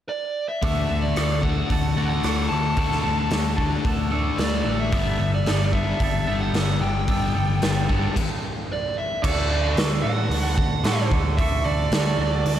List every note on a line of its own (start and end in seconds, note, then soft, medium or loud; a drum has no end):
0.09 0.48 D5 medium
0.49 1.01 E5 medium
0.62 0.85 D2 medium
0.62 0.87 D3 medium
0.62 1.16 D3 medium
0.62 0.88 A3 medium
0.62 0.88 D4 medium
0.62 0.92 D4 medium
0.62 0.90 F#4 medium
0.62 0.89 A4 medium
0.62 kick medium
0.62 open hi-hat soft
0.89 1.12 D2 medium
0.89 1.13 D3 medium
0.89 1.14 A3 medium
0.89 1.17 D4 medium
0.89 1.18 F#4 medium
0.89 1.19 A4 medium
1.02 1.40 D5 medium
1.16 1.60 D2 medium
1.16 1.69 D3 medium
1.16 1.41 D3 medium
1.16 1.41 A3 medium
1.16 1.45 D4 medium
1.16 1.44 F#4 loud
1.16 1.43 A4 medium
1.16 cross-stick loud
1.16 open hi-hat soft
1.42 1.68 D3 medium
1.42 1.68 A3 medium
1.42 1.68 D4 medium
1.42 1.71 F#4 medium
1.42 1.72 A4 medium
1.42 2.08 F#5 medium
1.42 kick medium
1.46 1.70 D4 medium
1.69 1.92 D2 medium
1.69 1.99 D3 medium
1.69 1.94 D3 medium
1.69 1.95 A3 medium
1.69 1.99 D4 medium
1.69 1.97 F#4 medium
1.69 1.97 A4 medium
1.69 kick medium
1.69 open hi-hat soft
1.96 2.18 D2 medium
1.96 2.22 D3 medium
1.96 2.22 A3 medium
1.96 2.22 D4 loud
1.96 2.25 D4 medium
1.96 2.25 F#4 medium
1.96 2.26 A4 medium
2.09 2.47 F#5 medium
2.23 2.46 D2 medium
2.23 2.48 D3 medium
2.23 2.76 D3 medium
2.23 2.48 A3 medium
2.23 2.53 D4 medium
2.23 2.51 F#4 medium
2.23 2.50 A4 medium
2.23 cross-stick medium
2.23 open hi-hat soft
2.49 2.73 D2 medium
2.49 2.75 D3 medium
2.49 2.75 A3 medium
2.49 2.78 D4 medium
2.49 2.78 F#4 medium
2.49 2.80 A4 medium
2.49 4.44 A5 medium
2.77 2.99 D2 medium
2.77 3.30 D3 medium
2.77 3.03 D3 medium
2.77 3.03 A3 medium
2.77 3.06 D4 medium
2.77 3.03 D4 medium
2.77 3.04 F#4 medium
2.77 3.03 A4 medium
2.77 kick loud
2.77 open hi-hat soft
2.92 snare soft
3.04 3.26 D2 medium
3.04 3.30 D3 medium
3.04 3.30 A3 medium
3.04 3.32 D4 medium
3.04 3.32 F#4 medium
3.04 3.34 A4 medium
3.31 3.75 D2 medium
3.31 3.83 D3 medium
3.31 3.56 D3 medium
3.31 3.56 A3 medium
3.31 3.60 D4 medium
3.31 3.57 F#4 loud
3.31 3.57 A4 medium
3.31 snare loud
3.31 open hi-hat soft
3.57 3.83 D3 medium
3.57 3.84 A3 loud
3.57 3.84 D4 medium
3.57 3.85 D4 medium
3.57 3.85 F#4 medium
3.57 3.87 A4 medium
3.57 kick medium
3.84 4.29 D2 medium
3.84 4.13 D3 medium
3.84 4.09 D3 medium
3.84 4.09 A3 medium
3.84 4.13 D4 medium
3.84 4.11 F#4 medium
3.84 4.11 A4 medium
3.84 kick loud
3.84 open hi-hat soft
4.11 4.37 D3 medium
4.11 4.36 D3 medium
4.11 4.37 A3 medium
4.11 4.37 D4 medium
4.11 4.39 D4 medium
4.11 4.38 F#4 medium
4.11 4.41 A4 medium
4.37 4.61 D2 medium
4.37 4.90 D3 medium
4.37 4.63 D3 medium
4.37 4.63 A3 medium
4.37 4.68 D4 medium
4.37 4.66 F#4 medium
4.37 4.65 A4 medium
4.37 4.76 D5 medium
4.37 snare medium
4.37 open hi-hat soft
4.65 4.88 A1 medium
4.65 4.90 D3 medium
4.65 4.90 A3 medium
4.65 4.93 D4 soft
4.65 4.92 F#4 medium
4.65 4.94 A4 medium
4.80 5.30 E5 medium
4.91 5.15 G1 medium
4.91 5.17 G2 medium
4.91 5.18 D3 medium
4.91 5.46 G3 medium
4.91 5.18 G3 medium
4.91 5.20 B3 medium
4.91 5.21 D4 medium
4.91 5.19 A4 medium
4.91 kick loud
4.91 open hi-hat soft
5.19 5.42 G1 medium
5.19 5.44 G2 medium
5.19 5.44 D3 medium
5.19 5.48 B3 medium
5.19 5.47 D4 soft
5.19 5.49 A4 medium
5.34 5.65 D5 medium
5.46 5.90 G1 medium
5.46 5.71 G2 medium
5.46 5.71 D3 medium
5.46 6.00 G3 medium
5.46 5.74 B3 medium
5.46 5.75 D4 medium
5.46 5.73 A4 medium
5.46 snare loud
5.46 open hi-hat soft
5.66 5.72 D5 medium
5.73 5.98 G2 medium
5.73 5.99 D3 medium
5.73 5.99 G3 medium
5.73 6.01 B3 medium
5.73 6.00 D4 medium
5.73 6.02 A4 medium
5.73 6.36 E5 medium
5.73 kick medium
6.00 6.22 G1 medium
6.00 6.25 G2 medium
6.00 6.25 D3 medium
6.00 6.28 G3 medium
6.00 6.27 B3 medium
6.00 6.28 D4 medium
6.00 6.26 A4 medium
6.00 kick loud
6.00 open hi-hat soft
6.26 6.49 G1 medium
6.26 6.53 G2 medium
6.26 6.53 D3 medium
6.26 6.53 G3 loud
6.26 6.53 G3 medium
6.26 6.55 B3 medium
6.26 6.54 D4 medium
6.26 6.55 A4 medium
6.41 6.78 F#5 medium
6.53 6.75 G1 medium
6.53 6.78 G2 medium
6.53 6.79 D3 medium
6.53 7.07 G3 medium
6.53 6.81 B3 medium
6.53 6.82 D4 medium
6.53 6.79 A4 medium
6.53 snare medium
6.53 open hi-hat soft
6.80 7.03 G1 medium
6.80 7.06 G2 medium
6.80 7.06 D3 medium
6.80 7.09 B3 medium
6.80 7.08 D4 medium
6.80 7.10 A4 medium
6.80 8.92 G5 medium
7.08 7.30 G1 medium
7.08 7.34 G2 medium
7.08 7.34 D3 medium
7.08 7.61 G3 medium
7.08 7.34 G3 medium
7.08 7.35 B3 medium
7.08 7.37 D4 medium
7.08 7.34 A4 loud
7.08 kick loud
7.08 open hi-hat soft
7.35 7.57 G1 medium
7.35 7.59 G2 medium
7.35 7.60 D3 medium
7.35 7.63 B3 medium
7.35 7.62 D4 medium
7.35 7.63 A4 medium
7.62 8.06 G1 medium
7.62 7.86 G2 medium
7.62 7.86 D3 medium
7.62 8.14 G3 medium
7.62 7.89 B3 medium
7.62 7.91 D4 loud
7.62 7.88 A4 medium
7.62 snare loud
7.62 open hi-hat medium
7.89 8.14 G2 medium
7.89 8.14 D3 medium
7.89 8.14 G3 loud
7.89 8.15 B3 medium
7.89 8.16 D4 medium
7.89 8.14 A4 medium
7.89 kick medium
8.16 kick medium
8.16 crash medium
8.73 8.96 D5 medium
8.98 9.23 E5 loud
9.22 9.49 D2 medium
9.22 9.76 D3 medium
9.22 9.53 D4 medium
9.22 9.51 F#4 medium
9.22 9.50 A4 medium
9.22 9.73 D5 medium
9.22 kick medium
9.22 crash loud
9.50 9.76 D2 medium
9.50 9.78 D4 soft
9.50 9.78 F#4 medium
9.50 9.79 A4 medium
9.76 10.02 D2 medium
9.76 10.83 D3 medium
9.76 10.06 D4 medium
9.76 10.05 F#4 medium
9.76 10.03 A4 medium
9.76 snare loud
9.76 open hi-hat soft
10.02 10.29 A2 medium
10.02 10.85 D4 medium
10.02 10.84 F#4 medium
10.02 10.87 A4 medium
10.02 10.55 F#5 medium
10.30 10.56 D2 medium
10.30 open hi-hat soft
10.56 10.83 D2 medium
10.56 11.06 F#5 loud
10.56 kick medium
10.84 11.10 A2 medium
10.84 11.37 D3 medium
10.84 11.14 D4 medium
10.84 11.12 F#4 medium
10.84 11.11 A4 loud
10.84 snare loud
10.84 open hi-hat medium
11.11 11.37 D2 medium
11.11 11.39 D4 medium
11.11 11.39 F#4 medium
11.11 11.41 A4 medium
11.11 kick medium
11.37 11.64 D2 medium
11.37 11.91 D3 medium
11.37 11.68 D4 medium
11.37 11.65 F#4 medium
11.37 11.64 A4 loud
11.37 11.65 E5 medium
11.37 kick loud
11.37 open hi-hat soft
11.64 11.90 D2 medium
11.64 11.93 D4 medium
11.64 11.93 F#4 medium
11.64 11.94 A4 medium
11.64 12.60 D5 loud
11.91 12.17 D2 medium
11.91 12.46 D3 medium
11.91 12.21 D4 medium
11.91 12.19 F#4 medium
11.91 12.18 A4 medium
11.91 snare loud
11.91 open hi-hat soft
12.18 12.44 D2 medium
12.18 12.60 D4 medium
12.18 12.60 F#4 medium
12.18 12.60 A4 medium
12.45 12.60 D2 medium
12.45 open hi-hat soft